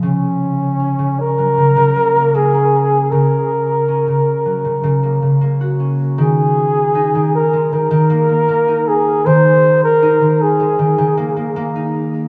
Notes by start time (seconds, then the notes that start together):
0.03 C#3 C#4
0.80 C#4
0.99 C#3
1.20 A#4
1.38 F#3
1.58 C#3
1.76 C#3
1.96 A#3
2.16 A#3
2.34 A#3 G#4
2.54 C#4
3.11 C#3 A#4
3.88 C#4
4.08 C#3
4.45 F#3
4.65 C#3
4.83 C#3
5.03 A#3
5.22 C#3
5.41 A#3
5.61 F#4
5.80 C#4
6.18 D#3 G#4
6.95 D#4
7.15 D#3
7.35 A#4
7.53 G#3
7.72 D#3 A#4
7.91 D#3
8.10 A#3
8.29 A#3
8.48 A#3
8.68 D#4
8.88 G#4
9.26 D#3 C5
9.84 A#4
10.02 D#4
10.22 D#3
10.42 G#4
10.60 G#3
10.79 D#3
10.98 D#3
11.17 A#3
11.36 A#3
11.56 A#3
11.76 D#4